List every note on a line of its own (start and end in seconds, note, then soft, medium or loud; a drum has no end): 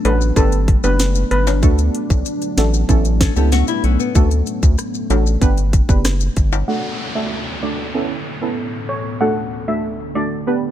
0.00 0.35 F#3 medium
0.00 0.33 A3 medium
0.00 0.35 D4 medium
0.05 0.32 A1 loud
0.05 0.34 A3 medium
0.05 0.34 D4 medium
0.05 0.34 F#4 medium
0.05 0.34 A4 medium
0.05 0.29 B4 medium
0.05 closed hi-hat medium
0.05 high timbale medium
0.21 maracas medium
0.36 0.77 G1 loud
0.36 1.62 G3 medium
0.36 0.53 B3 loud
0.36 1.62 B3 medium
0.36 0.53 D4 medium
0.36 2.87 D4 loud
0.36 0.53 G4 medium
0.36 0.48 A4 medium
0.36 0.53 B4 loud
0.36 kick medium
0.36 closed hi-hat medium
0.36 maracas medium
0.52 closed hi-hat medium
0.52 maracas soft
0.68 kick medium
0.68 closed hi-hat medium
0.84 1.24 F#1 loud
0.84 1.00 B3 medium
0.84 1.01 D4 medium
0.84 1.01 G4 medium
0.84 0.96 B4 medium
0.84 1.01 B4 medium
0.84 maracas medium
0.99 snare loud
0.99 closed hi-hat medium
0.99 maracas medium
1.15 closed hi-hat soft
1.15 maracas medium
1.31 1.64 G1 medium
1.31 1.43 B4 medium
1.31 closed hi-hat medium
1.47 snare medium
1.47 high timbale medium
1.47 maracas medium
1.63 1.90 D2 loud
1.63 2.88 F#3 medium
1.63 2.50 A3 medium
1.63 5.38 A3 medium
1.63 2.50 D4 medium
1.63 2.50 F#4 medium
1.63 2.50 A4 loud
1.63 kick loud
1.63 closed hi-hat medium
1.63 maracas medium
1.78 closed hi-hat medium
1.78 maracas soft
1.95 closed hi-hat medium
2.10 2.24 B1 medium
2.10 kick medium
2.10 maracas medium
2.25 closed hi-hat medium
2.25 maracas medium
2.42 closed hi-hat medium
2.42 maracas medium
2.57 2.84 A1 loud
2.57 2.86 A3 medium
2.57 2.86 D4 medium
2.57 2.87 F#4 medium
2.57 2.87 A4 medium
2.57 snare loud
2.57 closed hi-hat medium
2.74 maracas medium
2.89 3.29 A1 loud
2.89 3.06 B3 loud
2.89 4.14 B3 medium
2.89 3.06 C#4 medium
2.89 4.14 C#4 medium
2.89 3.06 E4 medium
2.89 3.06 A4 loud
2.89 kick medium
2.89 closed hi-hat medium
2.89 maracas medium
3.05 closed hi-hat medium
3.05 maracas soft
3.21 3.36 C#4 medium
3.21 3.36 A4 medium
3.21 kick medium
3.21 snare loud
3.21 closed hi-hat medium
3.36 3.63 C#2 medium
3.36 3.53 B3 medium
3.36 3.52 B3 medium
3.36 3.53 C#4 medium
3.36 3.53 E4 medium
3.36 3.51 G4 medium
3.36 3.53 A4 medium
3.36 maracas medium
3.52 3.68 A3 medium
3.52 3.67 F#4 medium
3.52 snare medium
3.52 closed hi-hat medium
3.52 maracas medium
3.68 3.83 G3 medium
3.68 3.83 E4 medium
3.68 closed hi-hat soft
3.68 maracas medium
3.84 3.97 B1 loud
3.84 3.99 E3 medium
3.84 3.99 C#4 medium
3.84 closed hi-hat medium
4.00 4.30 B3 medium
4.00 maracas medium
4.15 4.42 D2 loud
4.15 5.40 F#3 medium
4.15 5.02 A3 medium
4.15 5.02 D4 medium
4.15 6.65 D4 medium
4.15 5.03 F#4 medium
4.15 5.03 A4 loud
4.15 kick loud
4.15 closed hi-hat medium
4.15 maracas medium
4.31 closed hi-hat medium
4.31 maracas medium
4.46 closed hi-hat medium
4.46 maracas soft
4.63 4.76 D2 loud
4.63 kick medium
4.63 maracas medium
4.78 cross-stick medium
4.78 closed hi-hat medium
4.78 maracas medium
4.94 maracas medium
5.10 5.37 A1 loud
5.10 5.39 A3 medium
5.10 5.39 D4 medium
5.10 5.39 F#4 medium
5.10 5.39 A4 medium
5.10 closed hi-hat medium
5.10 high timbale medium
5.10 maracas soft
5.27 maracas medium
5.41 5.82 G1 loud
5.41 6.67 G3 medium
5.41 5.58 B3 medium
5.41 6.67 B3 medium
5.41 5.58 D4 medium
5.41 5.59 G4 medium
5.41 5.59 B4 loud
5.41 kick medium
5.41 closed hi-hat medium
5.41 maracas medium
5.58 closed hi-hat medium
5.58 maracas soft
5.73 kick medium
5.73 closed hi-hat medium
5.73 maracas medium
5.89 6.29 F#1 medium
5.89 6.06 B3 medium
5.89 6.06 D4 medium
5.89 6.06 G4 medium
5.89 6.06 B4 medium
5.89 kick medium
5.89 maracas medium
6.05 cross-stick loud
6.05 snare loud
6.05 closed hi-hat medium
6.05 maracas medium
6.20 closed hi-hat soft
6.20 maracas medium
6.36 6.64 G1 medium
6.36 kick medium
6.36 closed hi-hat medium
6.36 maracas soft
6.53 high timbale medium
6.53 maracas medium
6.68 7.93 D2 medium
6.68 7.93 D3 medium
6.68 6.85 A3 medium
6.68 7.93 A3 medium
6.68 6.85 D4 medium
6.68 7.93 F#4 medium
6.68 6.85 F#4 medium
6.68 10.43 A4 medium
6.68 6.85 A4 loud
6.68 6.92 F#5 loud
6.68 downlifter medium
7.15 7.59 A3 medium
7.15 7.59 D4 medium
7.15 7.59 F#4 medium
7.15 7.59 A4 medium
7.15 7.27 E5 medium
7.62 7.92 A3 medium
7.62 7.92 D4 medium
7.62 7.92 F#4 medium
7.62 7.92 A4 medium
7.62 7.75 D5 medium
7.94 9.19 A2 medium
7.94 9.19 E3 medium
7.94 8.11 B3 medium
7.94 9.19 B3 medium
7.94 8.11 C#4 medium
7.94 9.19 C#4 medium
7.94 8.11 E4 medium
7.94 8.11 A4 loud
8.41 8.58 B3 medium
8.41 8.58 C#4 medium
8.41 8.59 E4 medium
8.41 8.59 A4 medium
8.89 9.01 C#5 medium
9.20 10.46 D2 medium
9.20 10.71 D3 medium
9.20 9.37 A3 medium
9.20 10.46 A3 medium
9.20 9.37 D4 medium
9.20 10.46 F#4 medium
9.20 9.37 F#4 medium
9.20 9.38 A4 loud
9.20 9.44 F#5 medium
9.68 10.11 A3 medium
9.68 10.12 D4 medium
9.68 10.12 F#4 medium
9.68 10.12 A4 medium
9.68 9.80 E5 medium
10.15 10.44 A3 medium
10.15 10.44 D4 medium
10.15 10.45 F#4 medium
10.15 10.45 A4 medium
10.15 10.27 D5 medium
10.47 10.71 G2 medium
10.47 10.64 B3 medium
10.47 10.71 B3 medium
10.47 10.64 D4 medium
10.47 10.64 G4 medium
10.47 10.71 G4 medium
10.47 10.64 B4 loud
10.47 10.71 D5 medium